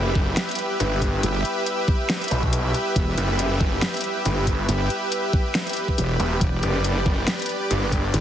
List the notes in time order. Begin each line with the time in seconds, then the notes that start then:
Already playing: F#1 G4 B4 E5
0.15 kick
0.37 snare, closed hi-hat
0.49 closed hi-hat
0.51 closed hi-hat
0.55 closed hi-hat
0.59 closed hi-hat
0.80 G1, closed hi-hat
1.02 kick, closed hi-hat
1.23 G1, closed hi-hat
1.45 closed hi-hat
1.66 closed hi-hat
1.88 kick
2.10 snare, closed hi-hat
2.21 closed hi-hat
2.24 closed hi-hat
2.28 B1, closed hi-hat
2.31 closed hi-hat
2.43 kick
2.53 closed hi-hat
2.74 closed hi-hat
2.96 E1, kick, closed hi-hat
3.18 F#1, closed hi-hat
3.39 closed hi-hat
3.61 kick
3.82 snare, closed hi-hat
3.94 closed hi-hat
3.97 closed hi-hat
4.01 closed hi-hat
4.04 closed hi-hat
4.25 G1, closed hi-hat
4.47 kick, closed hi-hat
4.69 G1, closed hi-hat
4.90 closed hi-hat
5.12 closed hi-hat
5.33 kick
5.55 snare, closed hi-hat
5.67 closed hi-hat
5.69 closed hi-hat
5.73 closed hi-hat
5.77 closed hi-hat
5.88 kick
5.98 E1, closed hi-hat
6.20 E1, closed hi-hat
6.41 E1 D5, kick, closed hi-hat
6.63 F#1, closed hi-hat
6.84 closed hi-hat
7.06 kick
7.28 snare, closed hi-hat
7.39 closed hi-hat
7.42 closed hi-hat
7.46 closed hi-hat
7.49 closed hi-hat
7.71 G1, closed hi-hat
7.92 kick, closed hi-hat
8.14 G1, closed hi-hat